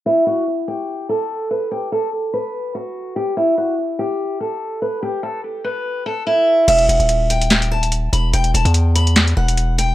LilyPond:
<<
  \new Staff \with { instrumentName = "Steel-string acoustic guitar" } { \time 4/4 \key e \minor \tempo 4 = 145 e'8 fis'8 r8 g'4 a'4 b'8 | g'8 a'8 r8 b'4 fis'4 g'8 | e'8 fis'8 r8 g'4 a'4 b'8 | g'8 a'8 r8 b'4 a'8 e'4 |
e''8 fis''8 r8 g''4 a''4 b''8 | g''8 a''8 r8 b''4 fis''4 g''8 | }
  \new Staff \with { instrumentName = "808-style bass" } { \clef bass \time 4/4 \key e \minor r1 | r1 | r1 | r1 |
e,,8 e,,16 dis,,2~ dis,,8. e,,8 | e,,8 e,,16 e,4.~ e,16 e,,4. | }
  \new DrumStaff \with { instrumentName = "Drums" } \drummode { \time 4/4 r4 r4 r4 r4 | r4 r4 r4 r4 | r4 r4 r4 r4 | r4 r4 r4 r4 |
<cymc hh>16 hh16 hh16 hh16 hh8 hh16 hh16 <hc hh sn>16 hh8 hh16 hh8 hh8 | hh16 hh16 hh16 hh16 hh8 hh16 hh16 <hc hh sn>16 hh8 hh16 hh8 hh8 | }
>>